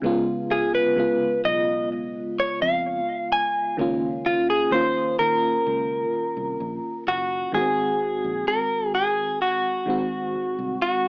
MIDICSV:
0, 0, Header, 1, 6, 480
1, 0, Start_track
1, 0, Key_signature, -5, "major"
1, 0, Tempo, 937500
1, 17, Time_signature, 4, 2, 24, 8
1, 5673, End_track
2, 0, Start_track
2, 0, Title_t, "Synth bell"
2, 0, Program_c, 0, 98
2, 0, Note_on_c, 0, 80, 65
2, 200, Note_off_c, 0, 80, 0
2, 260, Note_on_c, 0, 77, 56
2, 1160, Note_off_c, 0, 77, 0
2, 5673, End_track
3, 0, Start_track
3, 0, Title_t, "Clean electric guitar"
3, 0, Program_c, 1, 27
3, 263, Note_on_c, 1, 68, 87
3, 380, Note_off_c, 1, 68, 0
3, 382, Note_on_c, 1, 71, 92
3, 719, Note_off_c, 1, 71, 0
3, 742, Note_on_c, 1, 75, 101
3, 963, Note_off_c, 1, 75, 0
3, 1226, Note_on_c, 1, 73, 82
3, 1334, Note_off_c, 1, 73, 0
3, 1340, Note_on_c, 1, 77, 91
3, 1700, Note_off_c, 1, 77, 0
3, 1702, Note_on_c, 1, 80, 98
3, 1923, Note_off_c, 1, 80, 0
3, 2182, Note_on_c, 1, 65, 87
3, 2302, Note_off_c, 1, 65, 0
3, 2304, Note_on_c, 1, 68, 100
3, 2413, Note_off_c, 1, 68, 0
3, 2419, Note_on_c, 1, 72, 108
3, 2642, Note_off_c, 1, 72, 0
3, 2658, Note_on_c, 1, 70, 103
3, 3597, Note_off_c, 1, 70, 0
3, 3625, Note_on_c, 1, 66, 96
3, 3860, Note_off_c, 1, 66, 0
3, 3862, Note_on_c, 1, 68, 105
3, 4339, Note_off_c, 1, 68, 0
3, 4341, Note_on_c, 1, 70, 97
3, 4578, Note_off_c, 1, 70, 0
3, 4580, Note_on_c, 1, 68, 102
3, 4820, Note_off_c, 1, 68, 0
3, 4822, Note_on_c, 1, 66, 89
3, 5534, Note_off_c, 1, 66, 0
3, 5540, Note_on_c, 1, 66, 93
3, 5673, Note_off_c, 1, 66, 0
3, 5673, End_track
4, 0, Start_track
4, 0, Title_t, "FM electric piano"
4, 0, Program_c, 2, 5
4, 0, Control_c, 2, 64, 127
4, 10, Note_on_c, 2, 49, 91
4, 17, Note_on_c, 2, 56, 83
4, 23, Control_c, 2, 64, 0
4, 23, Note_on_c, 2, 59, 86
4, 30, Note_on_c, 2, 65, 100
4, 118, Control_c, 2, 64, 127
4, 364, Note_off_c, 2, 49, 0
4, 368, Note_off_c, 2, 56, 0
4, 371, Note_off_c, 2, 59, 0
4, 375, Note_off_c, 2, 65, 0
4, 489, Note_on_c, 2, 49, 72
4, 496, Note_on_c, 2, 56, 67
4, 502, Note_on_c, 2, 59, 65
4, 509, Note_on_c, 2, 65, 81
4, 1195, Note_off_c, 2, 49, 0
4, 1198, Note_off_c, 2, 56, 0
4, 1201, Note_off_c, 2, 59, 0
4, 1205, Note_off_c, 2, 65, 0
4, 1931, Note_on_c, 2, 51, 76
4, 1937, Note_on_c, 2, 58, 70
4, 1945, Control_c, 2, 64, 0
4, 1945, Note_on_c, 2, 61, 72
4, 1951, Note_on_c, 2, 65, 86
4, 2040, Control_c, 2, 64, 127
4, 2285, Note_off_c, 2, 51, 0
4, 2288, Note_off_c, 2, 58, 0
4, 2292, Note_off_c, 2, 61, 0
4, 2295, Note_off_c, 2, 65, 0
4, 2410, Note_on_c, 2, 51, 67
4, 2417, Note_on_c, 2, 58, 64
4, 2423, Note_on_c, 2, 61, 63
4, 2428, Note_on_c, 2, 65, 77
4, 3115, Note_off_c, 2, 51, 0
4, 3118, Note_off_c, 2, 58, 0
4, 3122, Note_off_c, 2, 61, 0
4, 3124, Note_off_c, 2, 65, 0
4, 3850, Note_on_c, 2, 51, 71
4, 3857, Note_on_c, 2, 56, 67
4, 3864, Control_c, 2, 64, 0
4, 3864, Note_on_c, 2, 59, 52
4, 3870, Note_on_c, 2, 66, 81
4, 3894, Note_off_c, 2, 59, 0
4, 3897, Note_on_c, 2, 60, 67
4, 3949, Control_c, 2, 64, 127
4, 4555, Note_off_c, 2, 51, 0
4, 4559, Note_off_c, 2, 56, 0
4, 4565, Note_off_c, 2, 66, 0
4, 4578, Note_off_c, 2, 60, 0
4, 5047, Note_on_c, 2, 51, 75
4, 5055, Note_on_c, 2, 56, 66
4, 5061, Note_on_c, 2, 60, 64
4, 5069, Note_on_c, 2, 66, 77
4, 5578, Note_off_c, 2, 51, 0
4, 5582, Note_off_c, 2, 56, 0
4, 5585, Note_off_c, 2, 60, 0
4, 5589, Note_off_c, 2, 66, 0
4, 5673, End_track
5, 0, Start_track
5, 0, Title_t, "Fingered electric bass"
5, 0, Program_c, 3, 33
5, 20, Note_on_c, 3, 37, 105
5, 309, Note_off_c, 3, 37, 0
5, 742, Note_on_c, 3, 35, 103
5, 1126, Note_off_c, 3, 35, 0
5, 1342, Note_on_c, 3, 41, 87
5, 1533, Note_off_c, 3, 41, 0
5, 1941, Note_on_c, 3, 37, 106
5, 2229, Note_off_c, 3, 37, 0
5, 2661, Note_on_c, 3, 39, 95
5, 2853, Note_off_c, 3, 39, 0
5, 2900, Note_on_c, 3, 37, 92
5, 3092, Note_off_c, 3, 37, 0
5, 3260, Note_on_c, 3, 36, 81
5, 3355, Note_off_c, 3, 36, 0
5, 3380, Note_on_c, 3, 34, 90
5, 3475, Note_off_c, 3, 34, 0
5, 3619, Note_on_c, 3, 30, 89
5, 3811, Note_off_c, 3, 30, 0
5, 3860, Note_on_c, 3, 32, 102
5, 4052, Note_off_c, 3, 32, 0
5, 4221, Note_on_c, 3, 34, 82
5, 4316, Note_off_c, 3, 34, 0
5, 5420, Note_on_c, 3, 36, 84
5, 5516, Note_off_c, 3, 36, 0
5, 5673, End_track
6, 0, Start_track
6, 0, Title_t, "Muted fingered electric bass strokes"
6, 382, Note_on_c, 9, 29, 53
6, 434, Note_off_c, 9, 29, 0
6, 1221, Note_on_c, 9, 29, 48
6, 1272, Note_off_c, 9, 29, 0
6, 2301, Note_on_c, 9, 29, 50
6, 2352, Note_off_c, 9, 29, 0
6, 3141, Note_on_c, 9, 29, 50
6, 3192, Note_off_c, 9, 29, 0
6, 5301, Note_on_c, 9, 29, 45
6, 5352, Note_off_c, 9, 29, 0
6, 5673, End_track
0, 0, End_of_file